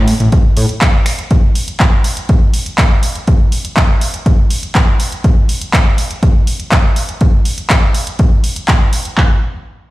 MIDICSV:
0, 0, Header, 1, 3, 480
1, 0, Start_track
1, 0, Tempo, 491803
1, 1274, Time_signature, 4, 2, 24, 8
1, 9668, End_track
2, 0, Start_track
2, 0, Title_t, "Analog synth bass"
2, 0, Program_c, 0, 38
2, 0, Note_on_c, 0, 45, 82
2, 135, Note_off_c, 0, 45, 0
2, 198, Note_on_c, 0, 33, 87
2, 285, Note_off_c, 0, 33, 0
2, 557, Note_on_c, 0, 45, 88
2, 647, Note_off_c, 0, 45, 0
2, 9668, End_track
3, 0, Start_track
3, 0, Title_t, "Drums"
3, 74, Note_on_c, 9, 46, 104
3, 172, Note_off_c, 9, 46, 0
3, 197, Note_on_c, 9, 42, 55
3, 294, Note_off_c, 9, 42, 0
3, 315, Note_on_c, 9, 42, 49
3, 317, Note_on_c, 9, 36, 112
3, 413, Note_off_c, 9, 42, 0
3, 415, Note_off_c, 9, 36, 0
3, 553, Note_on_c, 9, 46, 107
3, 650, Note_off_c, 9, 46, 0
3, 675, Note_on_c, 9, 42, 55
3, 773, Note_off_c, 9, 42, 0
3, 792, Note_on_c, 9, 39, 106
3, 794, Note_on_c, 9, 42, 47
3, 797, Note_on_c, 9, 36, 113
3, 890, Note_off_c, 9, 39, 0
3, 892, Note_off_c, 9, 42, 0
3, 894, Note_off_c, 9, 36, 0
3, 1033, Note_on_c, 9, 26, 72
3, 1033, Note_on_c, 9, 46, 101
3, 1131, Note_off_c, 9, 26, 0
3, 1131, Note_off_c, 9, 46, 0
3, 1158, Note_on_c, 9, 42, 59
3, 1255, Note_off_c, 9, 42, 0
3, 1275, Note_on_c, 9, 42, 48
3, 1277, Note_on_c, 9, 36, 100
3, 1373, Note_off_c, 9, 42, 0
3, 1374, Note_off_c, 9, 36, 0
3, 1517, Note_on_c, 9, 46, 99
3, 1614, Note_off_c, 9, 46, 0
3, 1638, Note_on_c, 9, 42, 57
3, 1736, Note_off_c, 9, 42, 0
3, 1755, Note_on_c, 9, 39, 101
3, 1757, Note_on_c, 9, 36, 107
3, 1757, Note_on_c, 9, 42, 46
3, 1853, Note_off_c, 9, 39, 0
3, 1855, Note_off_c, 9, 36, 0
3, 1855, Note_off_c, 9, 42, 0
3, 1994, Note_on_c, 9, 46, 94
3, 2092, Note_off_c, 9, 46, 0
3, 2117, Note_on_c, 9, 42, 59
3, 2215, Note_off_c, 9, 42, 0
3, 2235, Note_on_c, 9, 42, 48
3, 2237, Note_on_c, 9, 36, 110
3, 2333, Note_off_c, 9, 42, 0
3, 2335, Note_off_c, 9, 36, 0
3, 2475, Note_on_c, 9, 46, 98
3, 2572, Note_off_c, 9, 46, 0
3, 2598, Note_on_c, 9, 42, 57
3, 2696, Note_off_c, 9, 42, 0
3, 2713, Note_on_c, 9, 39, 104
3, 2715, Note_on_c, 9, 42, 47
3, 2717, Note_on_c, 9, 36, 108
3, 2811, Note_off_c, 9, 39, 0
3, 2813, Note_off_c, 9, 42, 0
3, 2815, Note_off_c, 9, 36, 0
3, 2955, Note_on_c, 9, 46, 97
3, 3053, Note_off_c, 9, 46, 0
3, 3079, Note_on_c, 9, 42, 57
3, 3176, Note_off_c, 9, 42, 0
3, 3196, Note_on_c, 9, 42, 49
3, 3198, Note_on_c, 9, 36, 98
3, 3294, Note_off_c, 9, 42, 0
3, 3296, Note_off_c, 9, 36, 0
3, 3437, Note_on_c, 9, 46, 91
3, 3534, Note_off_c, 9, 46, 0
3, 3560, Note_on_c, 9, 42, 60
3, 3657, Note_off_c, 9, 42, 0
3, 3676, Note_on_c, 9, 39, 103
3, 3678, Note_on_c, 9, 36, 101
3, 3678, Note_on_c, 9, 42, 48
3, 3774, Note_off_c, 9, 39, 0
3, 3775, Note_off_c, 9, 36, 0
3, 3776, Note_off_c, 9, 42, 0
3, 3917, Note_on_c, 9, 46, 93
3, 4015, Note_off_c, 9, 46, 0
3, 4040, Note_on_c, 9, 42, 63
3, 4138, Note_off_c, 9, 42, 0
3, 4158, Note_on_c, 9, 36, 106
3, 4159, Note_on_c, 9, 42, 49
3, 4255, Note_off_c, 9, 36, 0
3, 4256, Note_off_c, 9, 42, 0
3, 4397, Note_on_c, 9, 46, 99
3, 4494, Note_off_c, 9, 46, 0
3, 4519, Note_on_c, 9, 42, 56
3, 4617, Note_off_c, 9, 42, 0
3, 4636, Note_on_c, 9, 39, 98
3, 4637, Note_on_c, 9, 36, 99
3, 4638, Note_on_c, 9, 42, 48
3, 4733, Note_off_c, 9, 39, 0
3, 4735, Note_off_c, 9, 36, 0
3, 4735, Note_off_c, 9, 42, 0
3, 4877, Note_on_c, 9, 46, 91
3, 4975, Note_off_c, 9, 46, 0
3, 5001, Note_on_c, 9, 42, 61
3, 5098, Note_off_c, 9, 42, 0
3, 5117, Note_on_c, 9, 42, 52
3, 5118, Note_on_c, 9, 36, 100
3, 5214, Note_off_c, 9, 42, 0
3, 5215, Note_off_c, 9, 36, 0
3, 5359, Note_on_c, 9, 46, 96
3, 5456, Note_off_c, 9, 46, 0
3, 5480, Note_on_c, 9, 42, 60
3, 5577, Note_off_c, 9, 42, 0
3, 5597, Note_on_c, 9, 39, 107
3, 5598, Note_on_c, 9, 36, 100
3, 5599, Note_on_c, 9, 42, 48
3, 5694, Note_off_c, 9, 39, 0
3, 5695, Note_off_c, 9, 36, 0
3, 5696, Note_off_c, 9, 42, 0
3, 5837, Note_on_c, 9, 46, 84
3, 5935, Note_off_c, 9, 46, 0
3, 5960, Note_on_c, 9, 42, 64
3, 6058, Note_off_c, 9, 42, 0
3, 6077, Note_on_c, 9, 36, 103
3, 6077, Note_on_c, 9, 42, 51
3, 6175, Note_off_c, 9, 36, 0
3, 6175, Note_off_c, 9, 42, 0
3, 6317, Note_on_c, 9, 46, 95
3, 6415, Note_off_c, 9, 46, 0
3, 6438, Note_on_c, 9, 42, 58
3, 6536, Note_off_c, 9, 42, 0
3, 6554, Note_on_c, 9, 39, 105
3, 6556, Note_on_c, 9, 42, 47
3, 6558, Note_on_c, 9, 36, 98
3, 6652, Note_off_c, 9, 39, 0
3, 6654, Note_off_c, 9, 42, 0
3, 6655, Note_off_c, 9, 36, 0
3, 6795, Note_on_c, 9, 46, 88
3, 6893, Note_off_c, 9, 46, 0
3, 6918, Note_on_c, 9, 42, 59
3, 7015, Note_off_c, 9, 42, 0
3, 7034, Note_on_c, 9, 42, 51
3, 7038, Note_on_c, 9, 36, 97
3, 7132, Note_off_c, 9, 42, 0
3, 7135, Note_off_c, 9, 36, 0
3, 7275, Note_on_c, 9, 46, 92
3, 7372, Note_off_c, 9, 46, 0
3, 7396, Note_on_c, 9, 42, 61
3, 7494, Note_off_c, 9, 42, 0
3, 7513, Note_on_c, 9, 39, 112
3, 7515, Note_on_c, 9, 42, 51
3, 7518, Note_on_c, 9, 36, 100
3, 7610, Note_off_c, 9, 39, 0
3, 7612, Note_off_c, 9, 42, 0
3, 7615, Note_off_c, 9, 36, 0
3, 7754, Note_on_c, 9, 46, 89
3, 7852, Note_off_c, 9, 46, 0
3, 7877, Note_on_c, 9, 42, 62
3, 7975, Note_off_c, 9, 42, 0
3, 7994, Note_on_c, 9, 42, 50
3, 7997, Note_on_c, 9, 36, 107
3, 8091, Note_off_c, 9, 42, 0
3, 8095, Note_off_c, 9, 36, 0
3, 8235, Note_on_c, 9, 46, 92
3, 8332, Note_off_c, 9, 46, 0
3, 8357, Note_on_c, 9, 42, 61
3, 8455, Note_off_c, 9, 42, 0
3, 8472, Note_on_c, 9, 39, 106
3, 8474, Note_on_c, 9, 42, 48
3, 8477, Note_on_c, 9, 36, 99
3, 8569, Note_off_c, 9, 39, 0
3, 8571, Note_off_c, 9, 42, 0
3, 8574, Note_off_c, 9, 36, 0
3, 8713, Note_on_c, 9, 46, 91
3, 8811, Note_off_c, 9, 46, 0
3, 8836, Note_on_c, 9, 42, 61
3, 8934, Note_off_c, 9, 42, 0
3, 8955, Note_on_c, 9, 39, 72
3, 8956, Note_on_c, 9, 36, 89
3, 9053, Note_off_c, 9, 39, 0
3, 9054, Note_off_c, 9, 36, 0
3, 9668, End_track
0, 0, End_of_file